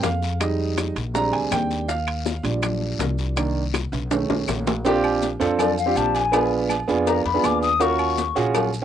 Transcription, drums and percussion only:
0.03 high bongo medium
0.03 low bongo medium
0.03 high conga medium
0.03 high timbale medium
0.03 short guiro medium
0.03 maracas medium
0.21 high bongo soft
0.21 high conga soft
0.21 short guiro medium
0.21 maracas soft
0.40 high bongo medium
0.40 high conga soft
0.40 high timbale medium
0.40 long guiro medium
0.40 claves medium
0.40 maracas medium
0.59 high conga soft
0.77 high bongo medium
0.77 high conga loud
0.77 high timbale medium
0.77 short guiro medium
0.77 claves medium
0.77 maracas medium
0.96 high bongo soft
0.96 high conga soft
0.96 high timbale medium
0.96 short guiro medium
0.96 maracas soft
1.15 high bongo medium
1.15 long guiro medium
1.15 maracas medium
1.33 high bongo soft
1.33 high conga soft
1.33 high timbale medium
1.51 high bongo medium
1.51 low bongo medium
1.51 high conga medium
1.51 high timbale medium
1.51 short guiro medium
1.51 claves medium
1.51 maracas medium
1.70 high bongo soft
1.70 high conga soft
1.70 short guiro medium
1.70 maracas soft
1.89 high bongo medium
1.89 high conga soft
1.89 long guiro medium
1.89 maracas medium
2.07 high conga soft
2.07 high timbale medium
2.07 claves medium
2.26 high bongo medium
2.26 high conga loud
2.26 short guiro medium
2.26 maracas medium
2.44 high bongo soft
2.44 high conga soft
2.44 high timbale medium
2.44 short guiro medium
2.44 maracas soft
2.62 high bongo medium
2.62 high conga soft
2.62 low conga medium
2.62 high timbale loud
2.62 long guiro medium
2.62 claves medium
2.62 maracas medium
2.82 high bongo soft
2.99 high bongo medium
2.99 low bongo medium
2.99 high conga medium
2.99 high timbale medium
2.99 short guiro medium
2.99 maracas medium
3.18 high bongo soft
3.18 high conga soft
3.18 short guiro medium
3.18 maracas soft
3.37 high bongo medium
3.37 high conga soft
3.37 high timbale loud
3.37 long guiro medium
3.37 claves medium
3.37 maracas medium
3.55 high conga soft
3.74 high bongo medium
3.74 high conga medium
3.74 high timbale loud
3.74 short guiro medium
3.74 claves medium
3.74 maracas medium
3.93 high bongo soft
3.93 high conga soft
3.93 high timbale medium
3.93 short guiro medium
3.93 maracas soft
4.11 high bongo medium
4.11 high conga soft
4.11 high timbale medium
4.11 long guiro medium
4.11 maracas medium
4.30 high bongo medium
4.30 high conga soft
4.30 high timbale medium
4.48 low bongo medium
4.48 high conga medium
4.48 low timbale medium
4.48 short guiro medium
4.48 claves medium
4.48 maracas medium
4.67 low bongo medium
4.67 low timbale medium
4.67 short guiro medium
4.67 maracas soft
4.85 cowbell loud
4.85 long guiro medium
4.85 maracas medium
5.03 high conga soft
5.03 low agogo loud
5.03 claves medium
5.22 cowbell medium
5.22 high conga loud
5.22 short guiro medium
5.22 maracas medium
5.40 cowbell medium
5.40 high conga soft
5.40 low agogo medium
5.40 short guiro medium
5.40 maracas soft
5.59 cowbell loud
5.59 high conga soft
5.59 low conga medium
5.59 low agogo loud
5.59 long guiro medium
5.59 claves medium
5.59 maracas medium
5.77 high conga soft
5.77 maracas medium
5.96 cowbell medium
5.96 high conga medium
5.96 low agogo medium
5.96 short guiro medium
5.96 maracas medium
6.14 cowbell medium
6.14 high conga soft
6.14 low agogo medium
6.14 short guiro medium
6.14 maracas soft
6.33 cowbell loud
6.33 high conga soft
6.33 low agogo loud
6.33 long guiro medium
6.33 claves medium
6.33 maracas medium
6.51 high conga soft
6.69 cowbell medium
6.69 high conga loud
6.69 low agogo loud
6.69 short guiro medium
6.69 claves medium
6.69 maracas medium
6.88 high conga soft
6.88 short guiro medium
6.88 maracas soft
7.07 cowbell loud
7.07 high conga soft
7.07 low agogo medium
7.07 long guiro medium
7.07 maracas medium
7.25 cowbell medium
7.25 high conga soft
7.43 cowbell medium
7.43 high conga medium
7.43 low timbale medium
7.43 low agogo loud
7.43 short guiro medium
7.43 claves medium
7.43 maracas medium
7.63 short guiro medium
7.63 maracas soft
7.80 cowbell loud
7.80 high conga soft
7.80 long guiro medium
7.80 maracas medium
7.99 high conga soft
7.99 low agogo loud
7.99 claves medium
8.18 cowbell medium
8.18 high conga loud
8.18 short guiro medium
8.18 maracas medium
8.36 cowbell medium
8.36 low agogo medium
8.36 short guiro medium
8.36 maracas soft
8.54 cowbell loud
8.54 high conga soft
8.54 low conga medium
8.54 low agogo loud
8.54 long guiro medium
8.54 claves medium
8.54 maracas medium
8.73 high conga soft
8.73 maracas medium

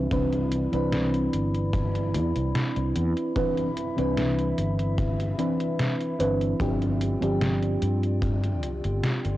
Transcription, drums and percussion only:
0.11 kick loud
0.11 closed hi-hat medium
0.33 closed hi-hat soft
0.52 closed hi-hat medium
0.73 closed hi-hat soft
0.93 snare loud
0.93 closed hi-hat medium
1.14 closed hi-hat soft
1.33 closed hi-hat medium
1.54 closed hi-hat soft
1.73 kick loud
1.73 closed hi-hat medium
1.95 closed hi-hat soft
2.14 closed hi-hat loud
2.36 closed hi-hat soft
2.55 snare loud
2.55 closed hi-hat medium
2.76 closed hi-hat soft
2.96 closed hi-hat medium
3.17 closed hi-hat soft
3.36 kick loud
3.36 closed hi-hat medium
3.57 closed hi-hat soft
3.77 closed hi-hat medium
3.98 closed hi-hat soft
4.17 snare loud
4.17 closed hi-hat medium
4.38 closed hi-hat soft
4.58 closed hi-hat medium
4.79 closed hi-hat soft
4.98 kick loud
4.98 closed hi-hat medium
5.20 closed hi-hat soft
5.39 closed hi-hat medium
5.60 closed hi-hat soft
5.79 snare loud
5.79 closed hi-hat medium
6.01 closed hi-hat soft
6.20 closed hi-hat medium
6.41 closed hi-hat soft
6.60 kick loud
6.60 closed hi-hat medium
6.82 closed hi-hat soft
7.01 closed hi-hat medium
7.22 closed hi-hat soft
7.42 snare loud
7.42 closed hi-hat medium
7.63 closed hi-hat soft
7.82 closed hi-hat medium
8.03 closed hi-hat soft
8.22 kick loud
8.22 closed hi-hat medium
8.44 closed hi-hat soft
8.63 closed hi-hat medium
8.84 closed hi-hat soft
9.04 snare loud
9.04 closed hi-hat medium
9.25 closed hi-hat soft

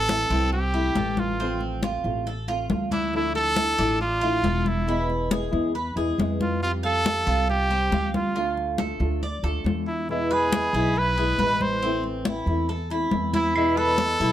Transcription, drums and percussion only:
0.09 high conga medium
0.31 high conga soft
0.53 high conga soft
0.74 high conga soft
0.96 high conga medium
1.17 high conga medium
1.40 high conga soft
1.61 high conga soft
1.83 high conga medium
2.05 high conga soft
2.27 high conga soft
2.48 high conga soft
2.70 high conga medium
2.91 high conga medium
3.13 high conga soft
3.35 high conga soft
3.56 high conga medium
3.79 high conga soft
4.01 high conga soft
4.22 high conga soft
4.44 high conga medium
4.66 high conga medium
4.88 high conga soft
5.10 high conga soft
5.31 high conga medium
5.53 high conga soft
5.76 high conga soft
5.97 high conga soft
6.20 high conga medium
6.41 high conga medium
6.62 high conga soft
6.84 high conga soft
7.06 high conga medium
7.27 high conga soft
7.49 high conga soft
7.70 high conga soft
7.92 high conga medium
8.14 high conga medium
8.36 high conga soft
8.57 high conga soft
8.78 high conga medium
9.01 high conga soft
9.23 high conga soft
9.45 high conga soft
9.66 high conga medium
10.09 high conga soft
10.31 high conga soft
10.53 high conga medium
10.75 high conga soft
10.96 high conga soft
11.18 high conga soft
11.39 high conga medium
11.61 high conga medium
11.82 high conga soft
12.04 high conga soft
12.25 high conga medium
12.47 high conga soft
12.69 high conga soft
12.90 high conga soft
13.11 high conga medium
13.33 high conga medium
13.55 high conga soft
13.55 claves medium
13.77 high conga soft
13.98 high conga medium
14.20 high conga soft

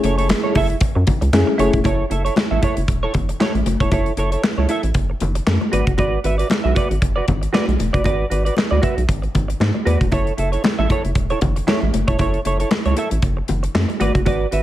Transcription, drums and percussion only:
0.04 closed hi-hat medium
0.04 muted conga soft
0.18 closed hi-hat soft
0.29 snare loud
0.29 clap medium
0.29 closed hi-hat medium
0.29 high conga medium
0.55 kick loud
0.55 open hi-hat medium
0.55 muted conga medium
0.70 closed hi-hat medium
0.81 kick loud
0.81 closed hi-hat loud
1.07 kick loud
1.07 closed hi-hat medium
1.07 muted conga medium
1.07 low conga medium
1.22 closed hi-hat medium
1.33 snare loud
1.33 clap medium
1.33 closed hi-hat medium
1.33 high conga medium
1.59 closed hi-hat medium
1.59 high conga medium
1.73 kick loud
1.73 closed hi-hat medium
1.84 kick loud
1.84 closed hi-hat medium
1.84 muted conga medium
2.11 closed hi-hat medium
2.11 muted conga soft
2.26 closed hi-hat soft
2.36 snare loud
2.36 clap medium
2.36 high conga medium
2.63 kick medium
2.63 closed hi-hat medium
2.63 muted conga soft
2.77 closed hi-hat soft
2.88 kick loud
2.88 closed hi-hat medium
3.14 kick medium
3.14 closed hi-hat medium
3.14 muted conga medium
3.14 low conga medium
3.29 closed hi-hat medium
3.41 snare medium
3.41 clap medium
3.41 high conga medium
3.55 closed hi-hat soft
3.55 high conga soft
3.66 closed hi-hat medium
3.66 high conga medium
3.80 kick medium
3.80 closed hi-hat soft
3.91 kick loud
3.91 closed hi-hat medium
3.91 muted conga medium
4.06 closed hi-hat soft
4.17 closed hi-hat medium
4.32 closed hi-hat soft
4.44 snare loud
4.44 clap medium
4.44 high conga medium
4.69 closed hi-hat medium
4.69 muted conga soft
4.83 closed hi-hat soft
4.94 kick loud
4.94 closed hi-hat medium
5.20 closed hi-hat medium
5.20 muted conga medium
5.20 low conga medium
5.35 closed hi-hat medium
5.47 snare loud
5.47 clap medium
5.47 high conga medium
5.62 high conga medium
5.73 closed hi-hat medium
5.73 high conga medium
5.87 kick medium
5.87 closed hi-hat soft
5.98 kick loud
5.98 closed hi-hat medium
5.98 muted conga medium
6.24 closed hi-hat medium
6.24 muted conga soft
6.39 closed hi-hat soft
6.50 snare loud
6.50 clap medium
6.50 high conga medium
6.76 kick medium
6.76 closed hi-hat medium
6.76 muted conga soft
6.91 closed hi-hat soft
7.02 kick loud
7.02 closed hi-hat loud
7.28 kick medium
7.28 closed hi-hat medium
7.28 muted conga soft
7.28 low conga medium
7.43 closed hi-hat medium
7.54 snare loud
7.54 clap medium
7.54 high conga medium
7.68 closed hi-hat soft
7.68 high conga soft
7.79 closed hi-hat medium
7.79 high conga medium
7.94 kick medium
7.94 closed hi-hat soft
8.04 kick loud
8.04 closed hi-hat medium
8.04 muted conga medium
8.31 closed hi-hat medium
8.46 closed hi-hat soft
8.57 snare loud
8.57 clap medium
8.57 high conga medium
8.83 kick medium
8.83 closed hi-hat medium
8.83 muted conga soft
8.98 closed hi-hat soft
9.09 kick loud
9.09 closed hi-hat medium
9.23 closed hi-hat soft
9.35 kick medium
9.35 closed hi-hat medium
9.35 muted conga medium
9.35 low conga medium
9.50 closed hi-hat medium
9.60 snare loud
9.60 clap medium
9.60 high conga medium
9.75 high conga soft
9.87 closed hi-hat medium
9.87 high conga medium
10.01 kick medium
10.01 closed hi-hat soft
10.12 kick medium
10.12 closed hi-hat medium
10.12 muted conga medium
10.27 closed hi-hat soft
10.38 closed hi-hat medium
10.53 closed hi-hat soft
10.64 snare loud
10.64 clap medium
10.64 high conga medium
10.90 kick medium
10.90 closed hi-hat medium
10.90 muted conga soft
11.05 closed hi-hat soft
11.15 kick loud
11.15 closed hi-hat loud
11.30 closed hi-hat soft
11.41 kick medium
11.41 closed hi-hat medium
11.41 muted conga medium
11.41 low conga medium
11.56 closed hi-hat medium
11.67 snare loud
11.67 clap medium
11.67 high conga medium
11.82 high conga soft
11.94 closed hi-hat medium
11.94 high conga medium
12.08 kick medium
12.08 closed hi-hat soft
12.19 kick loud
12.19 closed hi-hat medium
12.19 muted conga soft
12.34 closed hi-hat soft
12.45 closed hi-hat medium
12.45 muted conga soft
12.60 closed hi-hat soft
12.71 snare loud
12.71 clap medium
12.71 high conga medium
12.85 closed hi-hat soft
12.97 closed hi-hat medium
12.97 muted conga soft
13.11 closed hi-hat soft
13.22 kick loud
13.22 closed hi-hat medium
13.48 closed hi-hat medium
13.48 muted conga medium
13.48 low conga medium
13.64 closed hi-hat medium
13.75 snare loud
13.75 clap medium
13.75 high conga medium
13.89 closed hi-hat soft
13.89 high conga soft
14.01 closed hi-hat medium
14.01 high conga medium
14.15 kick medium
14.15 closed hi-hat soft
14.26 kick medium
14.26 closed hi-hat medium
14.26 muted conga medium
14.52 closed hi-hat medium

